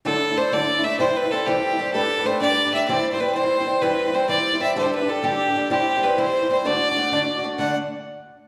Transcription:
X:1
M:6/8
L:1/16
Q:3/8=127
K:Dmix
V:1 name="Fiddle"
A4 c2 d4 e2 | c2 B2 A2 G6 | A4 c2 d4 e2 | d3 c B2 c6 |
B4 c2 d4 e2 | c2 B2 A2 G6 | G4 B2 c4 c2 | d8- d2 z2 |
f2 z8 z2 |]
V:2 name="Steel-string acoustic guitar"
[D,F,A,DEA] [A,DEA]2 [A,DEA] [A,DEA]2 [D,F,A,DEA] [A,DEA]2 [A,DEA] [A,DEA]2 | [C,E,G,CEc] [G,CEc]2 [G,CEc] [G,CEc]2 [C,E,G,CEc] [G,CEc]2 [G,CEc] [G,CEc]2 | [G,A,DGB] [DGB]2 [DGB] [A,DGB]2 [G,A,DGB] [DGB]2 [DGB] [A,DGB]2 | [C,E,G,CEc] [G,CEc]2 [G,CEc] [G,CEc]2 [C,E,G,CEc] [G,CEc]2 [G,CEc] [G,CEc]2 |
[C,E,G,CEc] [G,CEc]2 [G,CEc] [G,CEc]2 [C,E,G,CEc] [G,CEc]2 [G,CEc] [G,CEc]2 | [D,G,DGA] [DGA]2 [DGA] [G,DGA]2 [D,G,DGA] [DGA]2 [DGA] [G,DGA]2 | [C,E,G,CEc] [G,CEc]2 [G,CEc] [G,CEc]2 [C,E,G,CEc] [G,CEc]2 [G,CEc] [G,CEc]2 | [D,A,DFd] [DFd]2 [DFd] [A,DFd]2 [D,A,DFd] [DFd]2 [DFd] [A,DFd]2 |
[D,A,DFd]2 z8 z2 |]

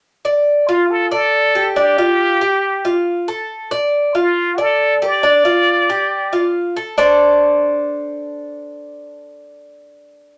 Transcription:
X:1
M:4/4
L:1/8
Q:1/4=138
K:Dm
V:1 name="Muted trumpet"
z3 F A A3 | G6 z2 | z3 F2 A2 d- | d6 z2 |
z8 | z8 |]
V:2 name="Cuban tres"
z d2 F2 d2 G | D F2 G2 F2 A- | A d2 F2 d2 G | D F2 G2 F2 A |
[DAc]8- | [DAc]8 |]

